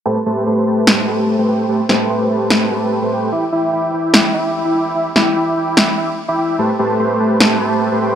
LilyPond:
<<
  \new Staff \with { instrumentName = "Supersaw synth" } { \time 4/4 \key a \minor \tempo 4 = 147 <a g' b' c'' a''>16 r16 <a g' b' c'' a''>8 <a g' b' c'' c'''>8 <a g' b' c'' a''>8 <a g' b' c'' a''>8 <a g' b' c'' a''>8. <a g' b' c'' c'''>16 <a g' b' c'' g''>8 | <a g' b' c'' a''>16 r16 <a g' b' c'' a''>8 <a g' b' c'' c'''>8 <a g' b' c'' a''>8 <a g' b' c'' a''>8 <a g' b' c'' a''>8. <a g' b' c'' c'''>16 <a g' b' c'' g''>8 | <e' e'' g'' b'' d'''>16 r16 <e' e'' g'' b'' d'''>8 <e' e'' g'' b'' d'''>8 <e' e'' g'' b'' d'''>8 <e' e'' g'' b'' d'''>8 <e' e'' g'' b'' d'''>8. <e' e'' g'' b'' d'''>16 <e' e'' g'' b'' d'''>8 | <e' e'' g'' b'' d'''>16 r16 <e' e'' g'' b'' d'''>8 <e' e'' g'' b'' d'''>8 <e' e'' g'' b'' d'''>8 <e' e'' g'' b'' d'''>8 <e' e'' g'' b'' d'''>16 r8 <e' e'' g'' b'' d'''>16 <e' e'' g'' b'' d'''>8 |
<a g' b' c'' a''>16 r16 <a g' b' c'' a''>8 <a g' b' c'' c'''>8 <a g' b' c'' a''>8 <a g' b' c'' a''>8 <a g' b' c'' a''>8. <a g' b' c'' c'''>16 <a g' b' c'' g''>8 | }
  \new DrumStaff \with { instrumentName = "Drums" } \drummode { \time 4/4 r4 r4 sn4 r4 | r8 sn8 r4 sn4 r4 | r4 r4 sn4 r4 | r8 sn8 r4 sn4 r4 |
r4 r4 sn4 r4 | }
>>